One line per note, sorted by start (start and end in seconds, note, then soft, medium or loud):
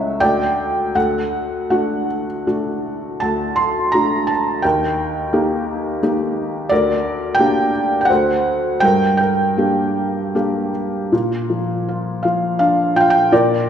0.00 0.17 C#2 medium
0.00 0.23 A3 soft
0.00 0.23 C#4 soft
0.00 0.23 E4 medium
0.00 0.23 C#5 medium
0.00 0.24 E5 loud
0.00 0.23 F#5 medium
0.20 0.92 D2 medium
0.20 0.91 D5 medium
0.20 0.97 G5 medium
0.95 3.17 D2 medium
0.95 2.05 A4 soft
0.95 1.67 F#5 medium
1.70 2.44 A3 soft
1.70 2.45 D4 soft
1.70 2.45 F#4 soft
1.70 2.24 F#5 medium
2.47 3.19 A3 soft
2.47 3.20 D4 soft
2.47 3.19 F#4 soft
3.20 4.60 D2 medium
3.20 3.59 A5 medium
3.56 3.94 C6 medium
3.92 4.62 A3 soft
3.92 4.62 D4 soft
3.92 4.62 F#4 soft
3.92 4.29 A#5 medium
4.27 4.64 A5 medium
4.62 6.67 D#2 medium
4.62 5.99 A#4 medium
4.62 5.98 G5 medium
5.33 6.01 A#3 soft
5.33 6.01 D#4 soft
5.33 6.01 G4 soft
6.03 6.69 A#3 soft
6.03 6.69 D#4 soft
6.03 6.69 G4 soft
6.69 8.06 D2 medium
6.69 7.71 A#4 medium
6.69 7.41 D5 medium
7.35 7.99 G5 medium
7.39 8.08 A#3 soft
7.39 8.08 D4 soft
7.39 8.09 G4 medium
8.01 8.09 G5 medium
8.05 8.79 C5 medium
8.05 8.83 F#5 medium
8.10 8.81 D2 medium
8.80 11.08 G2 medium
8.80 9.16 G5 medium
8.85 9.19 A#4 medium
9.17 10.71 A#4 medium
9.17 10.69 G5 medium
9.57 10.33 A#3 soft
9.57 10.33 D4 soft
9.57 10.33 G4 soft
10.35 11.10 A#3 soft
10.35 11.10 D4 soft
10.35 11.11 G4 soft
11.12 13.28 A#2 medium
11.50 12.24 F3 soft
11.89 12.94 F4 soft
12.23 13.29 F3 soft
12.23 12.57 F5 medium
12.59 13.30 D4 soft
12.59 12.93 F5 medium
12.96 13.31 F4 soft
12.96 13.03 G5 medium
13.01 13.09 F5 medium
13.10 13.33 G5 medium
13.32 13.70 A#2 medium
13.32 13.70 A#4 medium
13.32 13.70 D5 medium